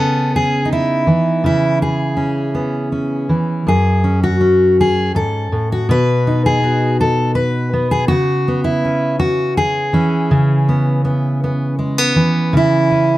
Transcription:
Already playing: C#3 B3 C#4 A4
0.36 G#4
0.65 D#4
0.72 E4
1.07 E3
1.44 C#3 E4
1.82 G#4
2.17 C#4
2.55 B3
2.92 C#4
3.29 E3
3.67 F#2 G#4
4.04 C#4
4.23 F#4
4.41 C#4
4.81 G#4
5.15 G#2 A4
5.52 A2
5.72 F#4
5.89 B2 B4
6.27 D#4
6.46 G#4
6.64 F#4
7.01 A4
7.35 B4
7.73 B3
7.91 G#4
8.08 C#3 F#4
8.48 B3
8.64 E4
8.85 C#4
9.20 F#4
9.57 G#4
9.93 E3 C#4
10.31 C#3
10.69 B3
11.05 B3
11.44 B3
11.79 G#3
11.98 B3
12.16 E3
12.53 C#3 E4
12.91 C#4

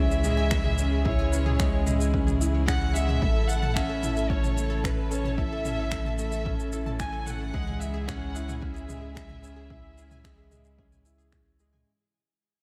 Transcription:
Already playing: C#2 C#3 E3 G#3 C#4 E4 G#4
0.00 E5
0.11 G#4, shaker
0.24 G#3 G#4, mid tom, shaker
0.37 G#5
0.51 B4, finger snap, kick, shaker
0.64 G#4, mid tom
0.78 C#4 G#4, shaker
0.91 G#4
1.05 E4 G#4 C#5, kick, mid tom
1.19 G#5
1.32 C#4 B4, shaker
1.46 G#4, mid tom
1.60 G#3 G#4, finger snap, kick, shaker
1.73 G#4
1.86 G#3 G#4, mid tom, shaker
2.00 G#5, shaker
2.13 C#4 B4, kick
2.27 G#4, mid tom, shaker
2.40 E4, shaker
2.55 C#5
2.68 C#4 G#4 F#5, finger snap, kick, mid tom, shaker
2.82 E5
2.95 G#3 E5, shaker
3.09 E5, mid tom
3.22 A1 C#3 E3 A3 A4, kick, mid tom
3.36 A4
3.48 A4 F#5, shaker
3.62 A5, mid tom
3.76 C#4 E5 A5, finger snap, kick, shaker
3.89 A4
4.03 E4 A4, mid tom, shaker
4.17 A4, shaker
4.30 C#4 A4 C#5, kick
4.43 A5, mid tom, shaker
4.57 A3 A5, shaker
4.70 A4
4.84 A4 B4, finger snap, kick, mid tom, shaker
4.97 A4
5.11 C#4 A4 C#5, shaker
5.25 A5, mid tom
5.38 E4 E5 A5, kick
5.52 A4
5.65 C#4 A4, mid tom, shaker
5.79 A4
5.92 A3 A4, finger snap, kick, shaker
6.05 A5, mid tom
6.18 A3 E5 A5, shaker
6.32 A4, shaker
6.45 C#4 A4, kick, mid tom
6.59 A4, shaker
6.72 E4 A4, shaker
6.86 A5, mid tom
7.00 C#4 G#5 A5, finger snap, kick, shaker
7.12 A4
7.27 A3 A4 F#5, mid tom, shaker
7.40 A4
7.54 C#2 G#3 E4 G#4, kick
7.67 G#5, mid tom
7.81 E5 G#5, shaker
7.94 G#4
8.07 C#4 G#4 F#5, finger snap, kick, mid tom, shaker
8.21 G#4
8.35 E4 G#4, shaker
8.48 G#5, mid tom, shaker
8.61 C#4 E5 G#5, kick
8.74 G#4, shaker
8.88 G#3 G#4, mid tom, shaker
9.01 G#4
9.15 G#4, finger snap, kick, shaker
9.29 G#5, mid tom
9.43 C#4 G#5, shaker
9.56 G#4
9.70 E4 G#4, kick, mid tom
9.84 G#4
9.98 C#4 G#4, shaker
10.11 G#5, mid tom, shaker
10.24 G#3 G#5, finger snap, kick, shaker
10.38 G#4
10.51 G#3 G#4, mid tom, shaker
10.65 G#4, shaker
10.78 C#4 G#4, kick
10.92 G#5, mid tom, shaker
11.05 E4 G#5, shaker
11.18 G#4, shaker
11.32 C#4 G#4, finger snap, kick, mid tom, shaker
11.46 G#4
11.59 G#3 G#4, shaker
11.73 G#5, mid tom

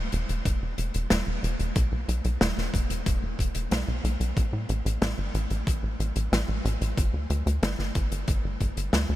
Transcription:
0.12 E1, closed hi-hat
0.29 E1, closed hi-hat
0.45 E1, kick, closed hi-hat
0.62 E1
0.78 E1, closed hi-hat
0.94 E1, closed hi-hat
1.10 E1, snare, closed hi-hat
1.27 E1
1.43 E1, closed hi-hat
1.59 E1, closed hi-hat
1.76 B1, kick, closed hi-hat
1.92 B1
2.08 B1, closed hi-hat
2.25 B1, closed hi-hat
2.41 E1, snare, closed hi-hat
2.57 E1, snare
2.74 E1, kick, closed hi-hat
2.90 E1, closed hi-hat
3.06 E1, kick, closed hi-hat
3.23 E1
3.39 E1, kick, closed hi-hat
3.55 E1, closed hi-hat
3.71 B1, snare, closed hi-hat
3.88 B1
4.04 B1, closed hi-hat
4.20 B1, closed hi-hat
4.37 A1, kick, closed hi-hat
4.53 A2
4.69 A1, closed hi-hat
4.85 A1, closed hi-hat
5.02 A1, snare, closed hi-hat
5.18 G1
5.34 A1, closed hi-hat
5.50 A1, closed hi-hat
5.67 A1, kick, closed hi-hat
5.83 A1
6.00 A1, closed hi-hat
6.16 A1, closed hi-hat
6.32 A1, snare, closed hi-hat
6.48 A1
6.65 A1, closed hi-hat
6.81 A1, closed hi-hat
6.98 G1, kick, closed hi-hat
7.14 D2
7.30 D2, closed hi-hat
7.46 D2, closed hi-hat
7.63 G1, snare, closed hi-hat
7.79 G1, snare
7.95 G1, kick, closed hi-hat
8.12 G1, closed hi-hat
8.28 G1, kick, closed hi-hat
8.44 G1
8.60 G1, kick, closed hi-hat
8.77 G1, closed hi-hat
8.93 D2, snare, closed hi-hat
9.09 D2

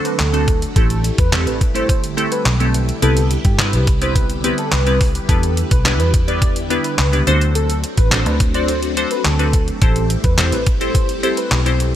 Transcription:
Already playing: D3 F#3 A3 C4 D4 F#4 A4, downlifter
0.05 B4, closed hi-hat
0.19 D2 A4, snare, clap, closed hi-hat
0.33 A3 C4 D4 F#4 A4, closed hi-hat
0.48 kick, closed hi-hat
0.62 closed hi-hat
0.76 A1 G3 A3 C4 E4 G4 A4, kick, closed hi-hat
0.90 closed hi-hat
1.04 closed hi-hat
1.18 E2 B4, kick, closed hi-hat
1.32 A3 C4 E4 G4 A4, snare, clap, closed hi-hat
1.47 A1 B4, closed hi-hat
1.61 kick, closed hi-hat
1.75 A3 C4 E4 G4 A4 C5, closed hi-hat
1.89 C5, kick, closed hi-hat
2.04 closed hi-hat
2.17 A3 C4 E4 G4 A4, closed hi-hat
2.32 B4, closed hi-hat
2.45 B1, snare, clap, closed hi-hat
2.60 A3 C4 E4 G4 A4, closed hi-hat
2.74 closed hi-hat
2.89 closed hi-hat
3.02 C2 B3 C4 E4 G4 A4 B4, closed hi-hat
3.17 closed hi-hat
3.31 closed hi-hat
3.45 G2 G4, kick, closed hi-hat
3.59 B3 C4 E4 G4 B4, snare, clap, closed hi-hat
3.73 C2 B4, closed hi-hat
3.87 kick, closed hi-hat
4.02 B3 C4 E4 G4 B4 C5, closed hi-hat
4.15 B4, kick, closed hi-hat
4.30 closed hi-hat
4.44 B3 C4 E4 G4 B4, closed hi-hat
4.58 A4, closed hi-hat
4.72 C2 B4, snare, clap, closed hi-hat
4.86 B3 C4 E4 G4 B4, closed hi-hat
5.01 kick, open hi-hat
5.15 closed hi-hat
5.29 E2 D3 B3 D4 E4 G4 A4 B4, kick, closed hi-hat
5.43 closed hi-hat
5.57 closed hi-hat
5.71 B1 B4, kick, closed hi-hat
5.85 B3 D4 E4 G4 B4, snare, clap, closed hi-hat
5.99 E2 B4, closed hi-hat
6.14 kick, closed hi-hat
6.28 B3 D4 E4 G4 B4 D5, closed hi-hat
6.42 D5, kick, closed hi-hat
6.56 closed hi-hat
6.70 B3 D4 E4 G4 B4, closed hi-hat
6.84 B4, closed hi-hat
6.98 C#2, snare, clap, closed hi-hat
7.13 B3 D4 E4 G4 B4, closed hi-hat
7.27 D2 F#3 A3 C4 D4 F#4 A4 C5, closed hi-hat
7.41 closed hi-hat
7.55 A4, closed hi-hat
7.70 closed hi-hat
7.84 closed hi-hat
7.97 A1 B4, kick, closed hi-hat
8.11 C4 D4 F#4 A4 C5, snare, clap, closed hi-hat
8.26 D2 B4, closed hi-hat
8.40 kick, closed hi-hat
8.54 C4 D4 F#4 A4 C5 D5, closed hi-hat
8.68 C5, closed hi-hat
8.83 closed hi-hat
8.97 C4 D4 F#4 A4 C5, closed hi-hat
9.11 B4, closed hi-hat
9.24 D2 A4, snare, clap, closed hi-hat
9.39 C4 D4 F#4 A4 B4, closed hi-hat
9.53 kick, closed hi-hat
9.68 closed hi-hat
9.81 A1 G3 C4 E4 G4 A4 C5, kick, closed hi-hat
9.96 closed hi-hat
10.10 closed hi-hat
10.24 E2 B4, kick, closed hi-hat
10.38 C4 E4 G4 A4 C5, snare, clap, closed hi-hat
10.52 A1 B4, closed hi-hat
10.66 kick, closed hi-hat
10.81 C4 E4 G4 A4 C5, closed hi-hat
10.95 C5, kick, closed hi-hat
11.09 closed hi-hat
11.23 C4 E4 G4 A4 C5, closed hi-hat
11.37 B4, closed hi-hat
11.51 B1, snare, clap, closed hi-hat
11.66 C4 E4 G4 A4 C5, closed hi-hat
11.80 closed hi-hat

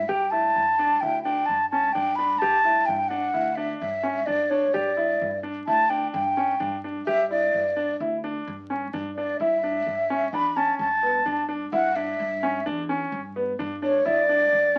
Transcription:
0.08 G2 G4 G5
0.31 E4 A5
0.56 G2
0.79 D4
1.00 D2 E4 G5
1.23 D4 G5
1.46 G2 A5
1.70 C#4 A5
1.93 G2 D4 G5
2.16 D4 B5
2.39 G2 G4 A5
2.65 E4
2.86 G2 G5
3.08 D4 F#5
3.34 D2 E4
3.55 D4 E5
3.79 G2 E5
4.03 C#4
4.26 G2 D4 D5
4.50 D4 C#5
4.73 G2 G4 D5
4.97 E4
5.21 G2
5.43 D4
5.67 D2 E4 A5
5.89 D4 G5
6.12 G2 G5
6.37 C#4
6.60 G2 D4
6.84 D4
7.07 G2 G4 E5
7.30 E4 D5
7.54 G2
7.76 D4
8.00 D2 E4
8.24 D4
8.47 G2
8.70 C#4
8.93 G2 D4
9.16 D4 D5
9.40 G2 E4 E5
9.63 D4
9.86 G2
10.10 C#4
10.33 E2 D4 B5
10.56 C#4 A5
10.79 G2 A5
11.03 B3
11.26 G2 D4
11.49 D4
11.72 G2 E4 F#5
11.96 D4 E5
12.20 G2
12.43 C#4
12.66 E2 D4
12.89 C#4
13.12 G2
13.36 B3
13.59 G2 D4
13.82 D4 C#5
14.05 G2 E4 D5
14.29 D4
14.53 G2

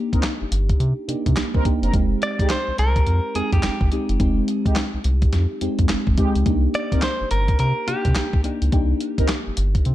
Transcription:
Already playing: A#3 D4 D#4 G4
0.13 G1 C4 D#4 A#4, kick, closed hi-hat
0.23 snare, clap, closed hi-hat
0.41 G1
0.52 G1, closed hi-hat
0.69 kick, closed hi-hat
0.80 C3, closed hi-hat
1.08 C3 A#3 D4 D#4 G4, closed hi-hat
1.26 C3, kick, closed hi-hat
1.36 C2, snare, clap, closed hi-hat
1.54 C2 C4 D#4 A#4, kick
1.65 A#3 D4 D#4 G4, kick, closed hi-hat
1.82 F#1 C4 D#4 A#4, closed hi-hat
1.93 F1 G#3 C4 D#4 G4, kick, closed hi-hat
2.22 D5, closed hi-hat
2.39 C2 G#3 D#4 G4, kick, closed hi-hat
2.49 C5, snare, clap, closed hi-hat
2.68 C2
2.78 C2 A#4, closed hi-hat
2.96 kick, closed hi-hat
3.07 F2, closed hi-hat
3.35 F2 G#3 C4 D#4 G4 G#4, closed hi-hat
3.52 F2 G4, kick, closed hi-hat
3.63 G1, snare, clap, closed hi-hat
3.81 G1, kick
3.91 G#3 C4 D#4 G4, closed hi-hat
4.09 F#1, closed hi-hat
4.20 F1 G#3 C4 D#4 G4, kick, closed hi-hat
4.48 closed hi-hat
4.65 C2 G#3 D#4 G4, kick, closed hi-hat
4.75 snare, clap, closed hi-hat
4.94 C2
5.04 C2, closed hi-hat
5.22 kick, closed hi-hat
5.33 F2, snare, closed hi-hat
5.61 F2 G#3 C4 D#4 G4, closed hi-hat
5.79 F2, kick, closed hi-hat
5.89 G1, snare, clap, closed hi-hat
6.07 G1, kick
6.17 G#3 C4 D#4 G4, kick, closed hi-hat
6.35 C#2, closed hi-hat
6.46 C2 A#3 D4 D#4 G4, kick, closed hi-hat
6.74 D5, closed hi-hat
6.92 G1 C4 D#4 A#4, kick, closed hi-hat
7.02 C5, snare, clap, closed hi-hat
7.21 G1
7.31 G1 A#4, closed hi-hat
7.48 kick, closed hi-hat
7.59 C3 A#4, closed hi-hat
7.87 C3 A#3 D4 D#4 G4, closed hi-hat
8.05 C3, kick, closed hi-hat
8.15 C2, snare, clap, closed hi-hat
8.33 C2, kick
8.44 A#3 D4 D#4 G4, closed hi-hat
8.62 C#2, closed hi-hat
8.72 C2 A#3 D4 D#4 G4, kick, closed hi-hat
9.01 closed hi-hat
9.18 G1 C4 D#4 A#4, kick, closed hi-hat
9.28 snare, clap, closed hi-hat
9.47 G1
9.57 G1, closed hi-hat
9.75 kick, closed hi-hat
9.85 C3, closed hi-hat

